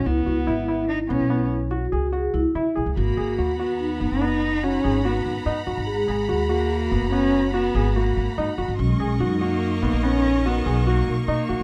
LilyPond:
<<
  \new Staff \with { instrumentName = "String section" } { \time 7/4 \key gis \minor \tempo 4 = 144 r1. r4 | <fis'' ais'' b''>1.~ <fis'' ais'' b''>4~ | <fis'' ais'' b''>1.~ <fis'' ais'' b''>4 | <ais' dis'' cis'''>1.~ <ais' dis'' cis'''>4 | }
  \new Staff \with { instrumentName = "Grand piano" } { \time 7/4 \key gis \minor r8 fis'8 e'8 e'4 b8 b4 fis'8 gis'8 fis'4 e'8 gis'8 | r8 gis'8 fis'8 fis'4 b8 b4 fis'8 gis'8 fis'4 dis'8 fis'8 | r8 gis'8 fis'8 fis'4 b8 b4 fis'8 gis'8 fis'4 dis'8 fis'8 | r8 gis'8 fis'8 fis'4 b8 b4 fis'8 gis'8 fis'4 dis'8 fis'8 | }
  \new Staff \with { instrumentName = "Vibraphone" } { \time 7/4 \key gis \minor e'1 fis'4 gis'8 e'4 r8 | fis'2 dis'1~ dis'4 | gis'2 fis'1~ fis'4 | cis'4 dis'1. | }
  \new Staff \with { instrumentName = "Cello" } { \time 7/4 \key gis \minor b2 dis'8 cis'4 r2. r8 | ais4. b4. dis'4 cis'4 b4 r4 | gis4. ais4. cis'4 b4 ais4 r4 | gis4. ais4. cis'4 b4 ais4 ais4 | }
  \new Staff \with { instrumentName = "Upright bass" } { \clef bass \time 7/4 \key gis \minor cis,8 cis,8 gis,,4. b,,16 b,,4.~ b,,16 cis,4 cis,16 r16 cis16 r16 b,,16 cis,16 | gis,,8 gis,,8 dis,4. fis,,16 fis,,4.~ fis,,16 gis,,4 gis,,16 r16 gis,16 r16 fis,,16 gis,,16~ | gis,,8 gis,,8 dis,4. fis,,16 fis,,4.~ fis,,16 gis,,4 gis,,16 r16 gis,16 r16 fis,,16 gis,,16 | b,,8 b,,8 fis,4. ais,,16 ais,,4.~ ais,,16 b,,4 b,,16 r16 b,16 r16 ais,,16 r16 | }
>>